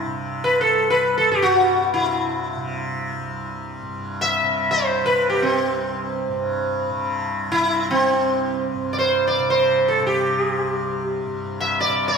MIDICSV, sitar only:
0, 0, Header, 1, 2, 480
1, 0, Start_track
1, 0, Tempo, 500000
1, 11691, End_track
2, 0, Start_track
2, 0, Title_t, "Sitar"
2, 0, Program_c, 0, 104
2, 423, Note_on_c, 0, 71, 91
2, 580, Note_off_c, 0, 71, 0
2, 584, Note_on_c, 0, 69, 81
2, 863, Note_off_c, 0, 69, 0
2, 867, Note_on_c, 0, 71, 85
2, 1125, Note_off_c, 0, 71, 0
2, 1129, Note_on_c, 0, 69, 76
2, 1259, Note_off_c, 0, 69, 0
2, 1263, Note_on_c, 0, 67, 69
2, 1366, Note_on_c, 0, 66, 80
2, 1387, Note_off_c, 0, 67, 0
2, 1827, Note_off_c, 0, 66, 0
2, 1859, Note_on_c, 0, 64, 67
2, 3355, Note_off_c, 0, 64, 0
2, 4043, Note_on_c, 0, 76, 92
2, 4517, Note_off_c, 0, 76, 0
2, 4521, Note_on_c, 0, 72, 80
2, 4855, Note_on_c, 0, 71, 87
2, 4860, Note_off_c, 0, 72, 0
2, 5080, Note_off_c, 0, 71, 0
2, 5084, Note_on_c, 0, 67, 74
2, 5194, Note_off_c, 0, 67, 0
2, 5206, Note_on_c, 0, 60, 72
2, 6592, Note_off_c, 0, 60, 0
2, 7216, Note_on_c, 0, 64, 97
2, 7560, Note_off_c, 0, 64, 0
2, 7589, Note_on_c, 0, 60, 77
2, 8283, Note_off_c, 0, 60, 0
2, 8572, Note_on_c, 0, 74, 55
2, 8622, Note_off_c, 0, 74, 0
2, 8626, Note_on_c, 0, 72, 70
2, 8901, Note_off_c, 0, 72, 0
2, 8904, Note_on_c, 0, 74, 72
2, 9117, Note_off_c, 0, 74, 0
2, 9121, Note_on_c, 0, 72, 77
2, 9471, Note_off_c, 0, 72, 0
2, 9488, Note_on_c, 0, 69, 72
2, 9660, Note_off_c, 0, 69, 0
2, 9663, Note_on_c, 0, 67, 59
2, 10574, Note_off_c, 0, 67, 0
2, 11141, Note_on_c, 0, 76, 82
2, 11329, Note_off_c, 0, 76, 0
2, 11333, Note_on_c, 0, 74, 74
2, 11589, Note_off_c, 0, 74, 0
2, 11596, Note_on_c, 0, 72, 73
2, 11691, Note_off_c, 0, 72, 0
2, 11691, End_track
0, 0, End_of_file